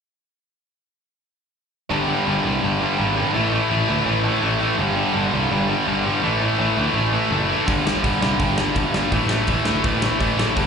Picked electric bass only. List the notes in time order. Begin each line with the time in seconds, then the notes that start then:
1.91 G1
2.28 G1
2.45 C2
2.64 G1
3.00 G#1
3.36 A1
3.71 A1
3.89 D2
4.06 A1
4.43 A1
4.79 G1
5.15 G1
5.34 C2
5.52 G1
5.88 G1
6.22 A1
6.60 A1
6.77 D2
6.94 A1
7.31 F#1
7.68 G1
8.04 G1
8.21 C2
8.40 G1
8.76 G1
9.12 A1
9.48 A1
9.65 D2
9.85 A1
10.21 A1
10.57 G1